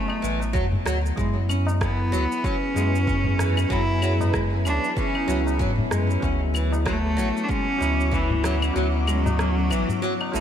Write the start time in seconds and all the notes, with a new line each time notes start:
Already playing: F#3 A3 B3 E4
0.08 tabla na, claves
0.22 A1 E3, shaker
0.40 tabla na, tabla tin, shaker
0.53 F#2 F#3, kick, shaker
0.72 tabla ge
0.85 D2 F#3, cross-stick, tabla tin, shaker
1.06 shaker
1.16 F#2 F#3 G#3 B3 E4 G#4 B4, kick, shaker
1.20 E4
1.35 tabla tin
1.49 C#4, claves, shaker
1.66 tabla na, tabla tin, shaker
1.81 E3 B3, kick, cross-stick, shaker
2.12 C#2 F#3, shaker
2.32 shaker
2.44 F#3 C#4, kick, shaker
2.74 F#2 F#3 G#3 B3 E4, tabla na, shaker
2.95 shaker
3.07 C#4, kick, shaker
3.24 tabla ge
3.38 E3, cross-stick, tabla tin, shaker
3.56 tabla tin, claves, shaker
3.69 F#2 F#3 B3 E4, kick, shaker
3.73 E4
3.89 tabla tin
4.02 F#3, claves, shaker
4.20 tabla na, tabla tin, tabla ge, shaker
4.33 G#3, kick, cross-stick, shaker
4.65 C#2 C#4 D4, claves, shaker
4.84 shaker
4.96 E3 C#4, kick, shaker
5.15 tabla na, claves
5.27 C#2 F#3 B3 E4, shaker
5.46 tabla na, shaker
5.59 A2 F#3, kick, shaker
5.78 tabla ge
5.91 F#2 G#3, cross-stick, tabla tin, shaker
6.10 shaker
6.20 D2 F#3 B3 C#4 F#4 D6, kick, shaker
6.24 E4
6.40 tabla tin
6.54 E3, claves, shaker
6.73 tabla na, tabla tin, shaker
6.85 F#3 A3, kick, cross-stick, shaker
7.17 A1 F#3, shaker
7.37 shaker
7.44 D4
7.49 G#3 C#4, kick, shaker
7.78 D2 F#3 B3 C#4 E4, tabla na, shaker
8.00 shaker
8.11 E3, kick, shaker
8.30 tabla ge
8.44 F#3, cross-stick, tabla tin, shaker
8.62 tabla tin, claves, shaker
8.74 D2 F#3 B3 E4, shaker
8.94 tabla tin
9.07 G#3, claves, shaker
9.25 tabla na, tabla tin, tabla ge, shaker
9.39 C#4, cross-stick, shaker
9.70 A1 E3, claves, shaker
9.89 tabla ge, shaker
10.02 F#3, shaker
10.21 tabla na, claves
10.32 A1 F#3 A3 B3, shaker
10.36 E4